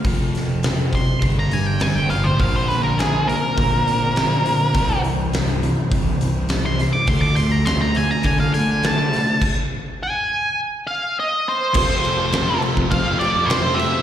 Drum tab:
CC |----------------|----------------|----------------|----------------|
HH |o-o-o-o-o-o-o-o-|o-o-o-o-o-o-o-o-|o-o-o-o-o-o-o-o-|o-o-o-o-o-o-o-o-|
SD |--o-o-------o---|--o-o-------o---|----o-------o-o-|--o-o-------o-o-|
BD |o-----o-o-------|o-------o-------|o-------o-------|o-------o-------|

CC |x---------------|x-x-x-x-x-x-x-x-|
HH |----------------|----------------|
SD |----------------|----o-----o-o---|
BD |o---------------|o------oo-------|